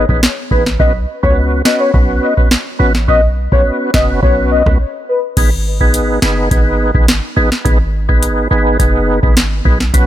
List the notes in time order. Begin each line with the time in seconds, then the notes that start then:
0.09 A1 B3 D#4 G#4 B4, kick
0.23 snare
0.51 A1 B3 D#4 G#4 B4, kick
0.66 snare
0.79 B1 B3 C#4 F#4 B4 D#5, kick
1.23 C#2 B3 C#4 F#4 B4 C#5, kick
1.65 B3 C#4 F#4 B4 D#5, snare
1.80 C#5
1.93 B1 B3 C#4 F#4 B4, kick
2.23 D#5
2.37 B3 C#4 F#4 B4, kick
2.51 snare
2.79 A1 B3 C#4 F#4 B4
2.95 snare
3.08 B1 B3 C#4 F#4 B4 D#5, kick
3.52 B1 B3 C#4 F#4 B4 C#5, kick
3.94 F#1 B3 C#4 F#4 B4 D#5, kick, snare
4.23 B1 B3 C#4 F#4 B4 C#5, kick
4.51 D#5
4.66 C#2 B3 C#4 F#4 B4, kick, cross-stick
5.09 B4
5.37 G#1 B3 D#4 G#4 B4, kick, closed hi-hat, crash
5.81 B3 D#4 G#4 B4, kick
5.94 closed hi-hat
6.22 F#1 B3 D#4 G#4 B4, snare
6.51 G#1 B3 D#4 G#4 B4, kick, closed hi-hat
6.94 G#1 B3 D#4 G#4 B4, kick
7.08 snare, closed hi-hat
7.36 A1 B3 D#4 G#4 B4
7.52 snare
7.65 G#1 B3 D#4 G#4 B4, kick, closed hi-hat
8.09 B3 D#4 G#4 B4, kick
8.23 closed hi-hat
8.51 G#1 B3 D#4 G#4 B4
8.79 F#1 B3 D#4 G#4 B4, kick, closed hi-hat
9.23 G#1 B3 D#4 G#4 B4, kick
9.37 snare, closed hi-hat
9.65 B1 B3 D#4 G#4 B4, kick
9.80 snare
9.94 B1 B3 C#4 F#4 B4, kick, closed hi-hat, riser